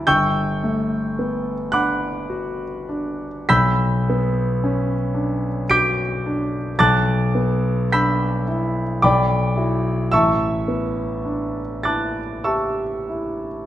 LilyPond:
\new Staff \with { instrumentName = "Grand piano" } { \time 3/4 \key a \mixolydian \tempo 4 = 54 << { <g'' cis''' e''' g'''>4. <fis'' b'' d''' fis'''>4. | <b'' e''' g''' b'''>2 <d''' g''' b''' d''''>4 | <a'' d''' fis''' a'''>4 <b'' e''' g''' b'''>8 r8 <d'' g'' b'' d'''>4 | <e'' a'' cis''' e'''>4. <a'' d''' fis''' a'''>8 <e'' a'' cis''' e'''>4 | } \\ { g,,8 a8 b8 d'8 fis'8 d'8 | b,,8 b8 cis'8 d'8 fis'8 d'8 | b,,8 b8 d'8 e'8 b,,8 <e' fis'>8 | a,,8 b8 d'8 e'8 g'8 e'8 | } >> }